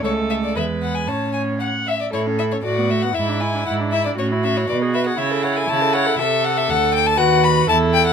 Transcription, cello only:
X:1
M:2/4
L:1/8
Q:1/4=118
K:A
V:1 name="Cello" clef=bass
C,,2 E,,2 | A,,3 z | A,,2 A,,2 | G,,2 G,,2 |
A,,2 B,,2 | C,2 C,2 | [K:Bphr] C,2 D,,2 | ^D,,2 E,,2 |]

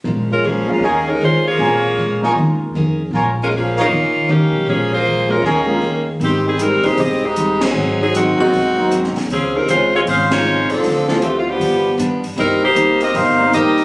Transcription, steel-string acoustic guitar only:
X:1
M:4/4
L:1/8
Q:"Swing" 1/4=156
K:Ab
V:1 name="Steel-string acoustic guitar"
[B,,F,A,D] z [B,,F,A,D] z [E,B,DA] z [E,B,DA] z | [B,,F,A,D] z [B,,F,A,D] z [E,B,DA] z [E,B,DA] z | [B,,F,A,D] z [B,,F,A,D] z [E,B,DA] z [E,B,DA] z | [B,,F,A,D] z [B,,F,A,D] z [E,B,DA] z [E,B,DA] z |
[A,,G,CE] z [A,,G,CE] z [A,,G,CE] z [A,,G,CE] z | [A,,_G,CE] z [A,,G,CE] z [A,,G,CE] z [A,,G,CE] z | [D,A,CF] z [D,A,CF] z [D,A,CF] z [D,A,CF] z | [=D,=A,CF] z [D,A,CF] z [G,,F,=B,=D] z [G,,F,B,D] z |
[C,G,B,E] z [C,G,B,E] z [C,G,B,E] z [C,G,B,E] z |]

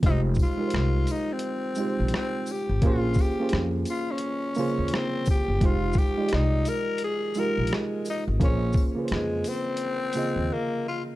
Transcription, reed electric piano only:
X:1
M:4/4
L:1/16
Q:"Swing 16ths" 1/4=86
K:Fm
V:1 name="Reed electric piano"
[A,EFGc]3 [A,EFGBc]6- [A,EFGBc] [A,EFGc]6 | [B,DFAc]3 [B,DFAc]6- [B,DFAc] [D,B,FAc]6 | [A,EFGc]3 [A,EFG=de]6- [A,EFGde] [A,EFGB]6 | [B,DFAc]3 [D,B,FA=Bc]6- [D,_B,FA=Bc] [D,_B,FAe]6 |]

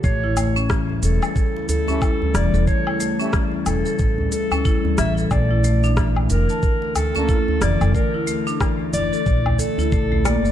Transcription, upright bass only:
X:1
M:4/4
L:1/16
Q:"Swing 16ths" 1/4=91
K:none
V:1 name="Upright bass" clef=bass
A,,,6 E,,, z6 z E,,, E,,, | z6 E,,, z A,,, z4 z A,,, z | _B,,,6 F,,, z6 z F,,, F,,, | z6 F,,, z _B,,, z3 B,,,3 F,,, |]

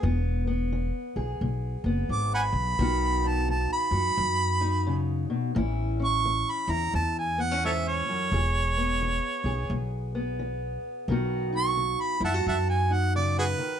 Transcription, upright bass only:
X:1
M:4/4
L:1/8
Q:"Swing" 1/4=87
K:E
V:1 name="Upright bass" clef=bass
E,,,3 B,,, B,,, F,,, G,,, B,,, | B,,,3 F,, F,,4 | A,,,3 E,, E,,4 | E,,,3 B,,, B,,,4 |
B,,,3 F,, F,,4 |]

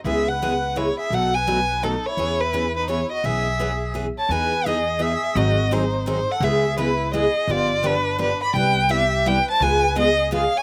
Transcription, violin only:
X:1
M:3/4
L:1/8
Q:"Swing" 1/4=169
K:E
V:1 name="Violin"
e f3 c e | f g3 A c- | c B2 B c d | e4 z a |
g2 d2 e2 | d2 ^B2 B f | e2 B2 d2 | =d2 B2 B b |
=g2 e2 g a | g2 d2 ^e g |]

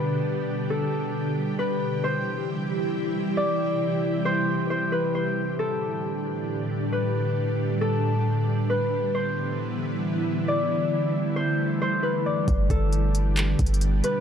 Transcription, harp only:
X:1
M:4/4
L:1/8
Q:1/4=135
K:G
V:1 name="Harp"
z3 A4 B | z c z4 z d | z3 c2 c B c | z A z4 z B |
z3 A4 B | z c z4 z d | z3 c2 c B d | z A z4 z B |]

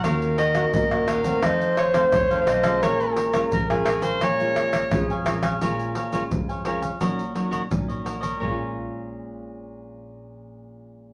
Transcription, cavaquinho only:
X:1
M:4/4
L:1/16
Q:1/4=86
K:Bbm
V:1 name="Cavaquinho"
[EBd]2 [EBdg] [EBdg] z [Bdg] [EBdg] [Bdg] [E=Acf]2 [EAcf] [EAcf] z [Acf] [EAcf] [Acf] | [Bdfa]2 [Bdfa] [Bdfa] z [dfa] [Bdfa] [dfa] [Bdfa]2 [Bdfa] [Bdfa] z [dfa] [Bdfa] [dfa] | [Bdfa]2 [Bdfa] [Bdfa] z [dfa] [Bdfa] [dfa] [GBde]2 [GBde] [GBde] z [Bde] [GBde] [Bde] | [Bdfa]16 |]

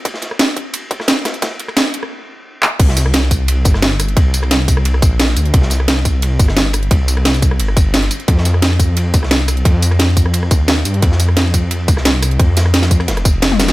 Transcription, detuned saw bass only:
X:1
M:4/4
L:1/8
Q:1/4=175
K:Cm
V:1 name="Detuned saw bass" clef=bass
z8 | z8 | C,,4- C,, G,,,3 | C,,4- C,, B,,,2 D,, |
C,,4- C,, G,,,3 | C,,4 G,,,3 z | F,,4- F,, C,,3 | F,,4- F,, E,,2 G,, |
F,,4- F,, C,,3 | F,,4 F,,,4 |]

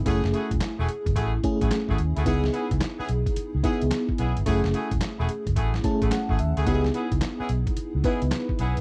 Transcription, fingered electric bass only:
X:1
M:4/4
L:1/16
Q:"Swing 16ths" 1/4=109
K:C#m
V:1 name="Fingered electric bass" clef=bass
F,,, F,,, z E,,, z E,,, z F,,, A,,,2 z A,,, z G,,, D,, =D,, | C,,2 z C,, z2 B,,, z2 C,, z C,, z2 B,,, =G,,, | F,,, F,,, z E,,, z E,,, z F,,, A,,,2 z A,,, z G,,, D,, =D,, | C,,2 z C,, z2 B,,, z2 C,, z C,, z2 B,,, =G,,, |]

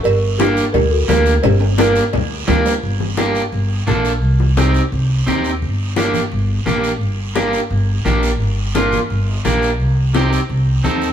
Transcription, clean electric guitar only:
X:1
M:4/4
L:1/8
Q:1/4=172
K:Gm
V:1 name="Clean electric guitar"
z2 [B,DG] z3 [B,DG] z | z2 [B,DG] z3 [B,DG] z | z2 [B,DG] z3 [B,DA] z | z2 [CEG] z3 [CEG] z |
z2 [B,DG] z3 [B,DG] z | z2 [B,DG] z3 [B,DG] z | z2 [B,DF] z3 [B,DG] z | z2 [CEG] z3 [CEA] z |]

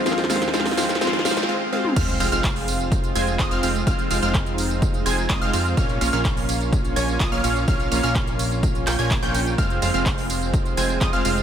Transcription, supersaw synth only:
X:1
M:4/4
L:1/16
Q:1/4=126
K:Fm
V:1 name="Supersaw synth"
[A,CFcf]2 [A,CFcf]2 [A,CFcf]2 [A,CFcf]2 [A,CFcf]2 [A,CFcf]2 [A,CFcf]2 [A,CFcf]2 | [A,CFcf]2 [A,CFcf] [A,CFcf]6- [A,CFcf] [A,CFca]2 [A,CFce] [A,CFcf] [A,CFcf]2 | [A,CFcf]2 [A,CFcf] [A,CFcf]6- [A,CFcf] [A,CFca]2 [A,CFce] [A,CFcf] [A,CFcf]2 | [B,DFdf]2 [B,DFdf] [B,DFdf]6- [B,DFdf] [B,DFda]2 [B,DFde] [B,DFdf] [B,DFdf]2 |
[B,DFdf]2 [B,DFdf] [B,DFdf]6- [B,DFdf] [B,DFdg] [B,DFda]2 [B,DFdg]3 | [A,CFcf]2 [A,CFcf] [A,CFcf]6- [A,CFcf] [A,CFca]2 [A,CFce] [A,CFcf] [A,CFcf]2 |]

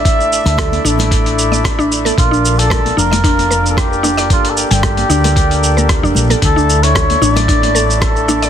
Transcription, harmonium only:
X:1
M:4/4
L:1/16
Q:"Swing 16ths" 1/4=113
K:Dm
V:1 name="Harmonium"
[A,DEAd]3 [A,DEAd]3 [A,DEAd]8- [A,DEAd]2 | [B,DFBd]3 [B,DFd]3 [B,DFBd]8- [B,DFBd]2 | [B,DGAd]3 [B,DGAd]3 [B,DGAd]8- [B,DGAd]2 | [A,DEAd]3 [A,DEAe]3 [A,DEAd]8- [A,DEAd]2 |]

